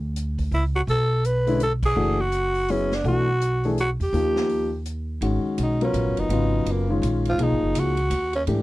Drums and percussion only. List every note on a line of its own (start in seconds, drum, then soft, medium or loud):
0.16 closed hi-hat medium
0.38 kick soft
0.38 open hi-hat soft
0.52 open hi-hat soft
0.88 open hi-hat soft
1.24 closed hi-hat medium
1.47 open hi-hat soft
1.60 closed hi-hat medium
1.83 kick medium
1.83 crash medium
2.32 closed hi-hat medium
2.55 open hi-hat soft
2.68 open hi-hat soft
2.91 snare medium
3.05 open hi-hat soft
3.41 closed hi-hat medium
3.63 open hi-hat soft
3.78 closed hi-hat medium
4.00 open hi-hat soft
4.14 open hi-hat soft
4.36 snare medium
4.49 open hi-hat soft
4.85 closed hi-hat medium
5.22 ride medium
5.58 hi-hat pedal medium
5.58 ride medium
5.81 ride soft
5.94 hi-hat pedal soft
5.94 ride medium
6.17 ride soft
6.30 ride medium
6.66 ride medium
7.03 hi-hat pedal medium
7.03 ride medium
7.25 ride soft
7.39 ride medium
7.75 hi-hat pedal medium
7.75 ride medium
7.97 ride soft
8.11 hi-hat pedal soft
8.11 ride medium
8.33 ride soft
8.47 ride medium